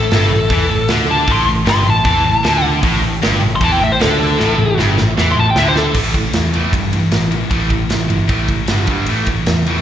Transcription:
Already playing: A4
0.10 G1 G2, snare, open hi-hat
0.16 A4
0.31 A1 A2
0.50 E2 E3, kick, open hi-hat
0.70 A1 A2
0.88 D2 D3, snare, open hi-hat
1.11 A5
1.27 A1 A2, kick, open hi-hat
1.32 C6
1.47 A1 A2
1.66 G1 G2 C6, snare, open hi-hat
1.85 A1 A2
1.90 A5
2.05 E2 E3, kick, open hi-hat
2.24 A1 A2
2.43 D2 D3, snare, open hi-hat
2.83 A1 A2, kick, open hi-hat
3.02 A1 A2
3.22 G1 G2, snare, open hi-hat
3.41 A1 A2
3.56 C6
3.61 E2 E3 A5, kick, open hi-hat
3.72 G5
3.81 A1 A2 E5
3.92 C5
3.99 D2 D3 A4, snare, open hi-hat
4.38 A1 A2, snare
4.57 A1 A2
4.77 G1 G2, snare
4.98 A1 A2, snare
5.17 E2 E3, snare
5.32 C6
5.37 A1 A2 A5
5.50 G5
5.56 D2 D3 E5, snare
5.68 C5
5.76 A4, snare
5.94 A1 A2 E3 A3, kick, crash
6.14 A2 E3, kick, ride
6.33 E2 A2 E3, snare, ride
6.54 A2 E3 A3, ride
6.72 G2 A2 E3, kick, ride
6.93 A2 E3, ride
7.11 A1 A2 E3, snare, ride
7.31 A2 E3, ride
7.50 A1 A2 E3 A3, kick, ride
7.70 A2 E3, kick, ride
7.89 A1 A2 E3, snare, ride
8.08 G1 A2 E3, ride
8.27 A1 A2 E3 A3, kick, ride
8.48 A2 E3, kick, ride
8.68 G1 G2 D3 G3, snare, ride
8.87 G1 G2 D3 G3, kick, ride
9.06 A1 A2 E3 A3, ride
9.26 A2, kick, ride
9.31 E3
9.46 E2 A2 E3, snare, ride
9.66 A2 E3 A3, ride

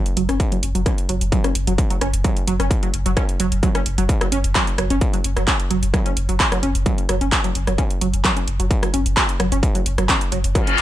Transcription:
0.06 closed hi-hat
0.17 F#1 F#3, open hi-hat
0.29 F#1 C#4, cross-stick, closed hi-hat
0.40 kick, closed hi-hat
0.52 F#3, closed hi-hat
0.63 F#1, open hi-hat
0.75 F#1 F#3, closed hi-hat
0.86 C#4, kick, cross-stick, closed hi-hat
0.98 closed hi-hat
1.09 F#1 F#3, open hi-hat
1.21 F#1, closed hi-hat
1.32 F#3, kick, closed hi-hat
1.44 C#4, cross-stick, closed hi-hat
1.55 F#1, open hi-hat
1.67 F#1 F#3, closed hi-hat
1.78 kick, closed hi-hat
1.90 F#3, closed hi-hat
2.01 F#1 C#4, cross-stick, open hi-hat
2.13 F#1, closed hi-hat
2.24 F#3, kick, closed hi-hat
2.37 closed hi-hat
2.47 F#1 F#3, open hi-hat
2.60 F#1 C#4, cross-stick, closed hi-hat
2.71 kick, closed hi-hat
2.83 F#3, closed hi-hat
2.94 F#1, open hi-hat
3.06 F#1 F#3, closed hi-hat
3.17 C#4, kick, cross-stick, closed hi-hat
3.29 closed hi-hat
3.40 F#1 F#3, open hi-hat
3.52 F#1, closed hi-hat
3.63 F#3, kick, closed hi-hat
3.75 C#4, cross-stick, closed hi-hat
3.86 F#1, open hi-hat
3.98 F#1 F#3, closed hi-hat
4.09 kick, closed hi-hat
4.21 F#3, cross-stick, closed hi-hat
4.32 F#1 C#4, open hi-hat
4.44 F#1, closed hi-hat
4.55 F#3, kick, clap, closed hi-hat
4.67 closed hi-hat
4.78 F#1 F#3, cross-stick, open hi-hat
4.90 F#1 C#4, closed hi-hat
5.01 kick, closed hi-hat
5.13 F#3, closed hi-hat
5.24 F#1, open hi-hat
5.36 F#1 F#3, cross-stick, closed hi-hat
5.47 C#4, kick, clap, closed hi-hat
5.60 closed hi-hat
5.71 F#1 F#3, open hi-hat
5.83 F#1, closed hi-hat
5.94 F#3, kick, cross-stick, closed hi-hat
6.06 C#4, closed hi-hat
6.17 F#1, open hi-hat
6.29 F#1 F#3, closed hi-hat
6.40 kick, clap, closed hi-hat
6.52 F#3, cross-stick, closed hi-hat
6.63 F#1 C#4, open hi-hat
6.75 F#1, closed hi-hat
6.86 F#3, kick, closed hi-hat
6.98 closed hi-hat
7.09 F#1 F#3, cross-stick, open hi-hat
7.21 F#1 C#4, closed hi-hat
7.32 kick, clap, closed hi-hat
7.44 F#3, closed hi-hat
7.55 F#1, open hi-hat
7.67 F#1 F#3, cross-stick, closed hi-hat
7.78 C#4, kick, closed hi-hat
7.90 closed hi-hat
8.01 F#1 F#3, open hi-hat
8.14 F#1, closed hi-hat
8.24 F#3, kick, cross-stick, clap, closed hi-hat
8.37 C#4, closed hi-hat
8.48 F#1, open hi-hat
8.60 F#1 F#3, closed hi-hat
8.71 kick, closed hi-hat
8.83 F#3, cross-stick, closed hi-hat
8.94 F#1 C#4, open hi-hat
9.06 F#1, closed hi-hat
9.17 F#3, kick, clap, closed hi-hat
9.29 closed hi-hat
9.40 F#1 F#3, cross-stick, open hi-hat
9.52 F#1 C#4, closed hi-hat
9.63 kick, closed hi-hat
9.75 F#3, closed hi-hat
9.86 F#1, open hi-hat
9.98 F#1 F#3, cross-stick, closed hi-hat
10.09 C#4, kick, clap, closed hi-hat
10.21 closed hi-hat
10.32 F#1 F#3, open hi-hat
10.44 F#1, closed hi-hat
10.55 F#3, kick, cross-stick, closed hi-hat, reverse cymbal
10.67 C#4, closed hi-hat
10.78 F#1, clap, open hi-hat

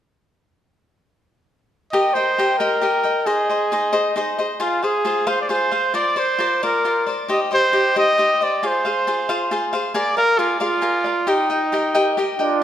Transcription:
1.92 G4 A#4 D#5 G5
2.14 A#4 C5 D#5 G5
2.38 G4 A#4 D#5 G5
2.59 G4 A#4 D#5 G5
2.81 G4 A#4 D#5 G5
3.03 A#4 D#5 G5
3.26 D#4 G#4 C5 D#5
3.50 G#4 C5 D#5
3.72 D#4 G#4 C5 D#5
3.93 D#4 G#4 C5 D#5
4.16 D#4 G#4 C5 D#5
4.38 G#4 C5 D#5
4.60 F4 G#4 C5 F5
4.83 G#4 C5 F5
5.05 F4 G#4 C5 F5
5.27 F4 G#4 C5 F5
5.41 D5
5.49 F4 G#4 C5 F5
5.71 G#4 C5 F5
5.94 F4 A#4 C5 D5
6.16 A#4 C5 D5
6.38 F4 A#4 C5 D5
6.63 F4 A#4 C5 D5
6.85 F4 A#4 C5 D5
7.07 A#4 C5 D5
7.28 D#4 G4 C5 D#5
7.51 G4 C5 D#5
7.72 D#4 G4 C5 D#5
7.96 D#4 G4 C5 D#5
8.18 D#4 G4 C5 D#5
8.41 G4 C5 D5 D#5
8.63 F4 G#4 C5 F5
8.85 G#4 C5 F5
9.07 F4 G#4 C5 F5
9.29 F4 G#4 C5 F5
9.51 F4 G#4 C5 F5
9.73 G#4 C5 F5
9.94 G#4 A#4 D5 F5
10.17 A#4 D5 F5
10.39 F4 G#4 A#4 D5 F5
10.60 F4 G#4 A#4 D5 F5
10.81 G#4 A#4 D5 F5
11.04 A#4 D5 F5
11.27 D#4 G4 A#4 D#5 G5
11.50 A#4 D#5 G5
11.72 G4 A#4 D#5 G5
11.94 G4 A#4 D#5 G5
12.17 G4 A#4 D#5 G5
12.39 D4 F4 A#4 D#5 G5

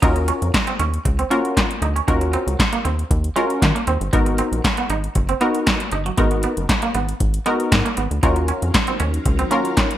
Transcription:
0.02 D#2 C#4 D#4 F4 F#4 A#4, kick, closed hi-hat
0.16 muted clean electric guitar stroke, closed hi-hat
0.28 C#4, closed hi-hat
0.42 F2, closed hi-hat
0.54 muted clean electric guitar stroke, kick, snare, clap, closed hi-hat
0.67 C4, closed hi-hat
0.80 D#2 C#4, closed hi-hat
0.94 closed hi-hat
1.05 C#2, muted clean electric guitar stroke, kick, closed hi-hat
1.19 C4, closed hi-hat
1.30 A#3 C#4 F4 F#4 A#4, closed hi-hat
1.45 closed hi-hat
1.57 muted clean electric guitar stroke, kick, snare, clap, closed hi-hat
1.71 closed hi-hat
1.82 D2 D#4, closed hi-hat
1.96 C#4, closed hi-hat
2.07 D#2 C#4 D#4 F4 F#4 A#4, kick, closed hi-hat
2.21 muted clean electric guitar stroke, closed hi-hat
2.33 C4, closed hi-hat
2.47 C#2, closed hi-hat
2.59 muted clean electric guitar stroke, kick, snare, clap, closed hi-hat
2.73 A#3, closed hi-hat
2.85 D#2 C4, closed hi-hat
2.99 closed hi-hat
3.11 D#2, kick, closed hi-hat
3.24 closed hi-hat
3.36 G#3 C#4 F4 F#4 A#4, closed hi-hat
3.50 closed hi-hat
3.62 D#3, muted clean electric guitar stroke, kick, snare, clap, closed hi-hat
3.75 A#3, closed hi-hat
3.87 D#2 C4, closed hi-hat
4.01 G1, closed hi-hat
4.13 G#1 G#3 B3 D#4 F#4 A#4, kick, closed hi-hat
4.26 muted clean electric guitar stroke, closed hi-hat
4.38 C4, closed hi-hat
4.52 A#1, closed hi-hat
4.64 muted clean electric guitar stroke, kick, snare, clap, closed hi-hat
4.77 B3, closed hi-hat
4.90 G#1 D#4, closed hi-hat
5.04 closed hi-hat
5.15 F#1, muted clean electric guitar stroke, kick, closed hi-hat
5.29 C4, closed hi-hat
5.41 B3 D#4 F#4 A#4, closed hi-hat
5.55 closed hi-hat
5.67 muted clean electric guitar stroke, kick, snare, clap, closed hi-hat
5.80 closed hi-hat
5.92 G1 D#4, closed hi-hat
6.06 F#3, closed hi-hat
6.17 G#1 G#3 B3 D#4 F#4 A#4, kick, closed hi-hat
6.31 muted clean electric guitar stroke, closed hi-hat
6.43 B3, closed hi-hat
6.57 F#1, closed hi-hat
6.69 muted clean electric guitar stroke, kick, snare, clap, closed hi-hat
6.82 A#3, closed hi-hat
6.95 G#1 B3, closed hi-hat
7.09 closed hi-hat
7.20 G#1, kick, closed hi-hat
7.34 closed hi-hat
7.46 G#3 B3 D#4 F#4 A#4, closed hi-hat
7.60 closed hi-hat
7.72 G#2, muted clean electric guitar stroke, kick, snare, clap, closed hi-hat
7.85 A#3, closed hi-hat
7.97 G#1 B3, closed hi-hat
8.11 D2, closed hi-hat
8.23 D#2 D#3 F#3 C#4 D#4 F4 F#4 A#4 F5, kick, closed hi-hat
8.36 muted clean electric guitar stroke, closed hi-hat
8.48 C#4, closed hi-hat
8.62 F2, closed hi-hat
8.74 muted clean electric guitar stroke, kick, snare, clap, closed hi-hat
8.87 C4, closed hi-hat
9.00 D#2 C#4, closed hi-hat
9.14 closed hi-hat
9.25 C#2, muted clean electric guitar stroke, kick, closed hi-hat
9.39 C4, closed hi-hat
9.51 A#3 C#4 F4 F#4 A#4, closed hi-hat
9.65 closed hi-hat
9.77 muted clean electric guitar stroke, kick, snare, clap, closed hi-hat
9.91 closed hi-hat

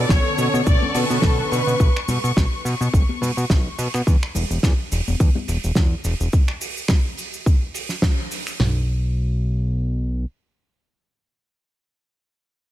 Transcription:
Already playing: D3 B3 C#4 A4 C#6
0.09 B1 C#5, finger snap, kick, snare, cabasa
0.38 B2, open hi-hat, cabasa
0.54 B2, muted conga, high conga, cabasa
0.66 B1 D5, kick, cabasa
0.82 high conga, low conga
0.94 B2 D3 B3 C#4 A4 B4, open hi-hat, muted conga, high conga, cabasa
1.10 B2, cabasa
1.22 B1, kick, snare, cabasa
1.51 B2 B4, open hi-hat, cabasa
1.67 B2, cabasa
1.80 B1, kick, cabasa
1.97 finger snap
2.08 B2, open hi-hat, muted conga, low conga, cabasa
2.24 B2, cabasa
2.37 B1, finger snap, kick, snare, cabasa
2.65 B2, open hi-hat, cabasa
2.81 B2, muted conga, high conga, cabasa
2.93 B1, kick, cabasa
3.09 high conga
3.21 B2, open hi-hat, high conga, low conga, cabasa
3.37 B2, cabasa
3.50 B1, kick, snare, cabasa
3.78 B2, open hi-hat, cabasa
3.94 B2, finger snap, cabasa
4.07 E2, kick, cabasa
4.23 finger snap
4.35 E1, open hi-hat, muted conga, low conga, cabasa
4.51 E1, cabasa
4.63 E2, finger snap, kick, snare, cabasa
4.92 E1, open hi-hat, cabasa
5.08 E1, muted conga, high conga, cabasa
5.20 E2, kick, cabasa
5.35 high conga, low conga
5.48 E1, open hi-hat, muted conga, high conga, cabasa
5.64 E1, cabasa
5.75 E2, kick, snare, cabasa
6.04 E1, open hi-hat, cabasa
6.20 E1, cabasa
6.33 kick, cabasa
6.48 finger snap
6.61 open hi-hat, cabasa
6.77 cabasa
6.88 finger snap, kick, snare, cabasa
7.17 open hi-hat, cabasa
7.34 cabasa
7.46 kick, cabasa
7.74 open hi-hat, cabasa
7.89 snare, cabasa
8.02 kick, snare, cabasa
8.31 open hi-hat, cabasa
8.47 finger snap, cabasa
8.60 B1, snare, floor tom

